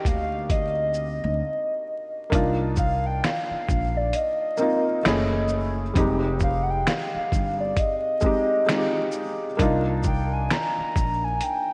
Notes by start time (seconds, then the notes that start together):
Already playing: A#3 C4 D4 D#4 F#4 G4
0.00 G5
0.05 D2 F5, kick, closed hi-hat, shaker
0.50 D#5, kick, closed hi-hat
0.94 shaker
1.24 D2
2.30 C2 A#3 D4 D#4, kick, closed hi-hat
2.35 F4
2.76 F5, kick, shaker
3.06 G5
3.24 F5, finger snap, snare, closed hi-hat
3.51 muted upright bass stroke
3.69 A#1, kick, shaker
3.97 D5
4.13 D#5, closed hi-hat
4.57 A#3 C4 D#4, shaker
4.62 F4
5.03 F#1 A3 C#4 E4, finger snap, snare, closed hi-hat
5.08 G#4
5.48 shaker
5.94 F1 G3 C4 D#4, kick, closed hi-hat
5.99 G#3 G4
6.40 F5, kick, shaker
6.63 F#5
6.70 G5
6.87 F5, finger snap, snare, closed hi-hat
7.15 muted upright bass stroke
7.32 G1, kick, shaker
7.60 D5
7.77 D#5, kick, closed hi-hat
8.21 G#3 C4 D#4, kick, shaker
8.26 G4
8.66 G#3 C4 D#4, finger snap, snare, closed hi-hat
8.71 F4
8.78 G4
9.12 shaker
9.57 C2 A#3 D4 D#4, kick, closed hi-hat
9.62 F4
10.03 G5, kick, shaker
10.33 G#5
10.50 A#5, finger snap, snare, closed hi-hat
10.78 muted upright bass stroke
10.96 A#1, kick, shaker
11.24 G#5
11.41 G5, closed hi-hat